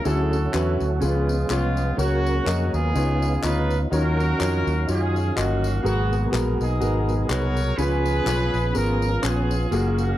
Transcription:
0.04 D2 D3 F3 C#4 E4 F#4 G#4 A4, tambourine
0.12 F#3
0.33 tambourine
0.52 E2 C#4 E4 F#4 B4, clap, tambourine
0.80 D2, tambourine
1.00 C#2 C#3 F3 G#3 B3 C#4 F4 G#4 B4, tambourine
1.29 tambourine
1.50 C2 G#3 B3 C#4 F4 G#4 C#5, clap, tambourine
1.77 tambourine
1.96 C#2 C#3 F#3 A#3 C#4 F#4 A#4 C#5, tambourine
2.26 tambourine
2.45 F2 C#4 F#4 A#4 D#5, clap, tambourine
2.73 D#2 B3 F4 G#4, tambourine
2.93 C#2 C#3 B3 C#4 D#4 E4 F4 B4 C#5, tambourine
2.99 F4
3.22 tambourine
3.42 D2 D#4 F4 B4 C#5, clap, tambourine
3.70 tambourine
3.90 D#2 D#3 F#3 C#4 D#4 F4 F#4 A#4 C#5, tambourine
3.97 F5
4.20 tambourine
4.38 F2 D#4 F4 F#4 C#5, clap, tambourine
4.67 D#2, tambourine
4.87 F#2 C#4 D#4 F4 F#4 G#4 C#5, tambourine
5.16 tambourine
5.36 G1 A#3 C#4 D#4 F4 F#4 D#5, clap, tambourine
5.64 tambourine
5.83 G#1 G#2 B2 F#3 A#3 B3 F#4 G#4 A#4, tambourine
6.13 tambourine
6.31 A#1 B3 F#4 G#4 A#4, clap, tambourine
6.60 B1 B3 D#4 G#4, tambourine
6.80 G#1 B3 F#4 G#4 A#4, tambourine
7.09 tambourine
7.28 C2 B3 F#4 G#4 A#4 B4 C#5, clap, tambourine
7.57 tambourine
7.77 C#2 C#3 E3 B3 C#4 F4 G#4 B4, tambourine
7.84 F3
8.06 tambourine
8.25 B1 B3 C#4 F4 G#4, clap, tambourine
8.54 A#1, tambourine
8.73 G#1 B3 C#4 F4 G#4 A#4, tambourine
9.02 tambourine
9.22 A#1 B3 C#4 F4 G#4 B4, clap, tambourine
9.51 tambourine
9.71 F#1 F#3 A#3 C#4 F4 F#4 G#4 F5, tambourine
9.77 G#4
9.98 tambourine

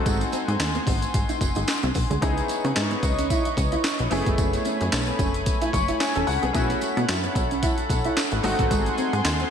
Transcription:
Already playing: A3 C4 D#4 F#4 A4 F#5 G#5 C6
0.06 G#1 G#3, kick, closed hi-hat, tambourine
0.21 muted clean electric guitar stroke, closed hi-hat, tambourine
0.32 C4, closed hi-hat, tambourine
0.48 G#2, closed hi-hat
0.60 D#2, muted clean electric guitar stroke, snare, clap, closed hi-hat, tambourine
0.75 B3, closed hi-hat
0.87 G#1 C4, kick, open hi-hat, tambourine
1.02 closed hi-hat, tambourine
1.14 G#1, kick, closed hi-hat, tambourine
1.29 D#4, closed hi-hat, tambourine
1.41 F#1, muted clean electric guitar stroke, kick, closed hi-hat, tambourine
1.55 G#1 D#4, closed hi-hat, tambourine
1.68 snare, clap, closed hi-hat, tambourine
1.83 C2 C4, closed hi-hat
1.94 B1, muted clean electric guitar stroke, kick, open hi-hat, tambourine
2.10 D2 G#3, closed hi-hat
2.21 C#2 B3 C#4 D#4 E4 G#4 B4 C#5 D#5 C#6, kick, closed hi-hat, tambourine
2.37 closed hi-hat, tambourine
2.48 muted clean electric guitar stroke, closed hi-hat, tambourine
2.64 C#3 B3, closed hi-hat
2.76 G#2, snare, clap, closed hi-hat, tambourine
2.91 B3, closed hi-hat
3.03 C#2, muted clean electric guitar stroke, kick, closed hi-hat, tambourine
3.19 C#4, closed hi-hat
3.30 E4, kick, closed hi-hat, tambourine
3.45 muted clean electric guitar stroke, closed hi-hat
3.57 C#2, kick, closed hi-hat, tambourine
3.72 E4, closed hi-hat
3.84 muted clean electric guitar stroke, snare, clap, closed hi-hat, tambourine
3.99 B1, closed hi-hat
4.10 F#1 A3 B3 C#4 E4 G#4 G#5 B5, open hi-hat, tambourine
4.26 G1 B3, kick, closed hi-hat
4.38 F#1 C#4, kick, closed hi-hat, tambourine
4.53 muted clean electric guitar stroke, closed hi-hat, tambourine
4.65 C#4, closed hi-hat, tambourine
4.81 F#2, closed hi-hat
4.92 B1, muted clean electric guitar stroke, snare, clap, closed hi-hat, tambourine
5.07 B3, closed hi-hat
5.19 F#1 C#4, kick, closed hi-hat, tambourine
5.34 closed hi-hat
5.46 kick, closed hi-hat, tambourine
5.62 E4, closed hi-hat
5.73 F#1 C#6, muted clean electric guitar stroke, kick, closed hi-hat, tambourine
5.88 E4, closed hi-hat
6.00 E4 C#5 G#5, snare, clap, closed hi-hat, tambourine
6.15 E1 C#4 A4, closed hi-hat
6.27 C#2 F#5, open hi-hat, tambourine
6.42 C2 B3 G#4, closed hi-hat
6.53 B1 A3 B3 C#4 E4 F#4 A4 F#5, kick, closed hi-hat, tambourine
6.70 closed hi-hat, tambourine
6.81 muted clean electric guitar stroke, closed hi-hat, tambourine
6.97 B2 A3, closed hi-hat
7.09 F#2, snare, clap, closed hi-hat, tambourine
7.24 B3, closed hi-hat
7.35 B1, muted clean electric guitar stroke, kick, closed hi-hat, tambourine
7.51 C#4, closed hi-hat
7.63 E4, kick, closed hi-hat, tambourine
7.78 muted clean electric guitar stroke, closed hi-hat
7.90 B1, kick, closed hi-hat, tambourine
8.05 E4, closed hi-hat
8.17 muted clean electric guitar stroke, snare, clap, closed hi-hat, tambourine
8.31 A1, closed hi-hat
8.43 G#1 A3 C4 D#4 F#4 G#5 C6, open hi-hat, tambourine
8.59 A1 B3, kick, closed hi-hat
8.71 G#1 G#3, kick, closed hi-hat, tambourine
8.86 muted clean electric guitar stroke, closed hi-hat
8.97 C4, closed hi-hat, tambourine
9.13 G#2, closed hi-hat
9.25 D#2, muted clean electric guitar stroke, snare, clap, closed hi-hat, tambourine
9.40 C4, closed hi-hat

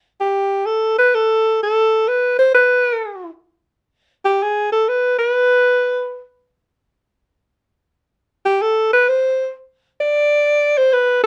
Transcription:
0.20 G4
0.66 A4
0.98 B4
1.15 A4
1.63 A4
2.08 B4
2.39 C5
2.54 B4
4.25 G4
4.42 G#4
4.72 A4
4.89 B4
5.18 B4
8.45 G4
8.62 A4
8.93 B4
9.09 C5
10.00 D5
10.78 C5
10.93 B4

